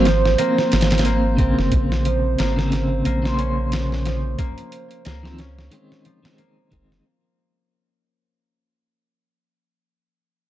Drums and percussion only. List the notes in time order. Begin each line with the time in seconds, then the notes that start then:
0.05 snare, closed hi-hat
0.25 snare
0.38 closed hi-hat
0.58 snare
0.72 snare, closed hi-hat
0.81 snare, closed hi-hat
0.91 snare, closed hi-hat
0.98 snare, closed hi-hat
1.05 closed hi-hat
1.38 kick, closed hi-hat
1.59 snare
1.72 kick, closed hi-hat
1.92 snare
2.05 closed hi-hat
2.38 snare, closed hi-hat
2.59 snare
2.72 snare, closed hi-hat
3.05 closed hi-hat
3.25 snare
3.39 closed hi-hat
3.72 snare, closed hi-hat
3.92 snare
4.05 snare, closed hi-hat
4.39 kick, closed hi-hat
4.58 closed hi-hat
4.72 closed hi-hat
4.91 closed hi-hat
5.05 snare, closed hi-hat
5.25 snare
5.38 snare, closed hi-hat
5.59 snare
5.72 closed hi-hat
5.92 snare
6.05 closed hi-hat
6.25 snare
6.38 closed hi-hat
6.72 kick, closed hi-hat
6.92 snare